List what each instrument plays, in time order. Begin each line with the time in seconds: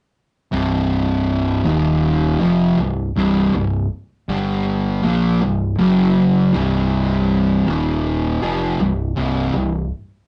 0.52 fingered electric bass C1, distorted electric guitar C2 G2 C3
1.64 fingered electric bass D#1, distorted electric guitar D#2 A#2 D#3
2.40 fingered electric bass F1, distorted electric guitar F2 C3 F3
2.78 fingered electric bass C1, distorted electric guitar C2 G2
3.15 fingered electric bass C1, distorted electric guitar C2 G2 C3
3.53 fingered electric bass C1, distorted electric guitar C2 G2
4.28 fingered electric bass G1, distorted electric guitar G2 D3 G3
5.04 fingered electric bass A#1, distorted electric guitar A#2 F3 A#3
5.42 fingered electric bass C1, distorted electric guitar C2 G2
5.78 fingered electric bass F#1, distorted electric guitar F#2 C#3 F#3
6.53 fingered electric bass C1, distorted electric guitar C2 G2 C3
7.67 fingered electric bass D#1, distorted electric guitar D#2 A#2 D#3
8.42 fingered electric bass F1, distorted electric guitar F2 C3 F3
8.80 fingered electric bass C1, distorted electric guitar C2 G2
9.16 fingered electric bass C1, distorted electric guitar C2 G2 C3
9.54 fingered electric bass C1, distorted electric guitar C2 G2